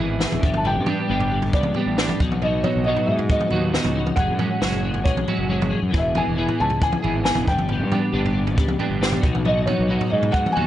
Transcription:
Already playing: E3 B3 E4 G#4 E5
0.00 G#1 E3 B3 E4 G#4
0.19 E3 B3 E4 G#4, snare
0.32 E1, floor tom, mid tom
0.41 G1 G3 B3 D4 G4, kick
0.54 A5, mid tom
0.64 G3 B3 D4 G4 G5, floor tom
0.76 G2
0.86 G3 B3 D4 G4, floor tom, mid tom
1.08 G1 G3 B3 D4 G4
1.20 floor tom
1.31 B3 D4 G4
1.42 floor tom
1.53 C#2 G3 B3 D4 G4 D5, kick
1.63 mid tom
1.74 G3 B3 D4 G4, floor tom
1.86 A1
1.97 G3 B3 D4 G4, snare
2.09 floor tom, mid tom
2.20 B1 B3 D#4 F#4, kick
2.24 B2 F#3
2.32 mid tom
2.42 B2 F#3 B3 D#4 F#4 D#5, floor tom
2.63 F#3 B3 D#4 F#4 C#5, floor tom, mid tom
2.76 B1
2.84 B2 F#3 B3 D#4 F#4 D#5
2.89 F#4
2.96 floor tom
3.06 G#2 D#4 F#4 E5
3.11 B3
3.19 floor tom
3.29 F#3 B3 D#4 F#4 D#5, kick
3.40 mid tom
3.50 D#2 F#3 B3 D#4 F#4, floor tom
3.72 F#3 B3 D#4 F#4, snare
3.84 C#2, floor tom, mid tom
3.95 B3 D#4 F#4
4.07 mid tom
4.16 F#1 F#3 G#3 C#4 F#5, kick, floor tom
4.21 G#4
4.28 F#2
4.39 F#3 G#3 C#4 F#4, floor tom, mid tom
4.61 F#1 F#3 G#3 C#4 F#4 G#4, snare
4.73 floor tom
4.83 G#3 C#4 G#4
4.94 floor tom
5.04 B1 F#3 G#3 C#4 G#4 C#5, kick
5.17 mid tom
5.28 F#3 G#3 C#4 F#4, floor tom
5.38 F#1
5.49 F#3 G#3 C#4 F#4 G#4
5.62 floor tom, mid tom
5.70 G#3 C#4 G#4
5.82 F#2
5.91 E1 E3 B3 E4, kick, floor tom
5.95 G#4 E5
6.15 E3 B3 E4 G#4 G#5, floor tom, mid tom
6.27 E1
6.35 E3 B3 E4 G#4
6.48 floor tom
6.58 C#2 B3 E4 G#4 A5
6.70 floor tom
6.80 E3 B3 E4 G#4 G#5, kick
6.92 mid tom
7.03 G#1 E3 B3 E4 G#4, floor tom
7.24 E3 B3 E4 G#4 G#5, snare
7.35 E1, floor tom, mid tom
7.48 G1 G3 B3 D4 G4 G5, kick
7.58 mid tom
7.69 G3 B3 D4, floor tom
7.73 G4
7.79 G2
7.92 G3 B3 D4 G4, floor tom, mid tom
8.12 G1 G3 B3 D4 G4
8.26 floor tom
8.32 B3 D4 G4
8.47 floor tom
8.56 C#2 G3 B3 D4 G4, kick
8.68 mid tom
8.79 G3 B3 D4 G4, floor tom
8.90 G1
9.01 G3 B3 D4 G4, snare
9.12 floor tom, mid tom
9.21 B1 B2 F#3 B3 D#4 F#4, kick
9.35 mid tom
9.44 B2 F#3 B3 D#4 F#4 D#5, floor tom
9.60 D#5
9.66 F#3 B3 D#4 F#4 C#5, floor tom, mid tom
9.79 B1
9.87 B2 F#3 B3 D#4 F#4
9.91 F#4
10.01 floor tom
10.09 G#2 B3 D#4 F#4 D#5
10.23 floor tom
10.31 F#3 B3 D#4 F#5, kick
10.35 F#4
10.46 mid tom
10.52 F#4 G#5
10.56 D#2 F#3 B3 D#4, floor tom

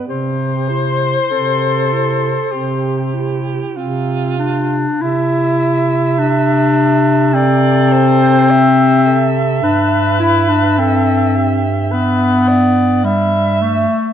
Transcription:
0.07 C3 C4 G4 C5
0.68 E4 C5
1.30 C3 C4 A4
1.93 E4
2.52 C3 C4 G4
3.14 E4
3.77 C3 C4 F4
4.39 D4
5.01 C3 E4 E5
6.19 D4
7.33 C4 A4 D5
7.92 C5
8.49 G4 E5
9.06 A4
9.63 G2 D4 B4
10.20 E4
10.49 D4
10.78 C4 A4
11.36 G4
11.91 B3 B4
12.47 D5
13.04 G3 E5
13.61 A3

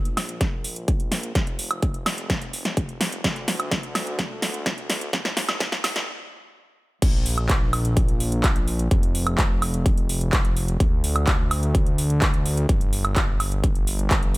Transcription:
Already playing: A#1
0.05 closed hi-hat
0.17 snare, open hi-hat, high woodblock
0.29 closed hi-hat
0.41 kick, snare, closed hi-hat
0.64 open hi-hat
0.76 closed hi-hat
0.88 kick, closed hi-hat
1.00 closed hi-hat
1.12 snare, open hi-hat
1.23 closed hi-hat
1.35 F1, kick, snare, closed hi-hat
1.47 closed hi-hat
1.59 open hi-hat
1.71 closed hi-hat, high woodblock
1.82 kick, closed hi-hat
1.94 closed hi-hat
2.06 snare, open hi-hat, high woodblock
2.18 closed hi-hat
2.30 kick, snare, closed hi-hat
2.42 closed hi-hat
2.53 open hi-hat
2.65 snare, closed hi-hat
2.77 kick, closed hi-hat
2.89 closed hi-hat
3.01 snare, open hi-hat
3.12 closed hi-hat
3.24 D2, kick, snare, closed hi-hat
3.36 closed hi-hat
3.48 snare, open hi-hat
3.60 closed hi-hat, high woodblock
3.71 kick, snare, closed hi-hat
3.83 closed hi-hat
3.95 snare, open hi-hat, high woodblock
4.07 closed hi-hat
4.19 kick, snare, closed hi-hat
4.42 snare, open hi-hat
4.54 closed hi-hat
4.66 kick, snare, closed hi-hat
4.78 closed hi-hat
4.90 snare, open hi-hat
5.01 closed hi-hat
5.13 G1, kick, snare, closed hi-hat
5.25 snare, closed hi-hat
5.37 snare, open hi-hat
5.49 snare, closed hi-hat, high woodblock
5.60 kick, snare, closed hi-hat
5.72 snare, closed hi-hat
5.84 snare, open hi-hat, high woodblock
5.96 snare, closed hi-hat
7.02 A#1, kick, closed hi-hat, crash
7.26 open hi-hat
7.38 closed hi-hat, high woodblock
7.49 kick, clap, closed hi-hat
7.73 open hi-hat, high woodblock
7.85 closed hi-hat
7.97 kick, closed hi-hat
8.09 closed hi-hat
8.20 open hi-hat
8.32 closed hi-hat
8.44 kick, clap, closed hi-hat
8.56 closed hi-hat
8.68 open hi-hat
8.79 closed hi-hat
8.91 F1, kick, closed hi-hat
9.03 closed hi-hat
9.15 open hi-hat
9.27 closed hi-hat, high woodblock
9.38 kick, clap, closed hi-hat
9.62 open hi-hat, high woodblock
9.74 closed hi-hat
9.86 kick, closed hi-hat
9.98 closed hi-hat
10.09 open hi-hat
10.21 closed hi-hat
10.33 kick, clap, closed hi-hat
10.45 closed hi-hat
10.57 open hi-hat
10.68 closed hi-hat
10.80 D2, kick, closed hi-hat
11.04 open hi-hat
11.16 closed hi-hat, high woodblock
11.27 kick, clap, closed hi-hat
11.51 open hi-hat, high woodblock
11.63 closed hi-hat
11.75 kick, closed hi-hat
11.87 closed hi-hat
11.98 open hi-hat
12.10 closed hi-hat
12.22 kick, clap, closed hi-hat
12.34 closed hi-hat
12.46 open hi-hat
12.57 closed hi-hat
12.69 G1, kick, closed hi-hat
12.81 closed hi-hat
12.93 open hi-hat
13.05 closed hi-hat, high woodblock
13.16 kick, clap, closed hi-hat
13.40 open hi-hat, high woodblock
13.52 closed hi-hat
13.64 kick, closed hi-hat
13.75 closed hi-hat
13.87 open hi-hat
13.99 closed hi-hat
14.11 kick, clap, closed hi-hat
14.23 closed hi-hat
14.34 open hi-hat

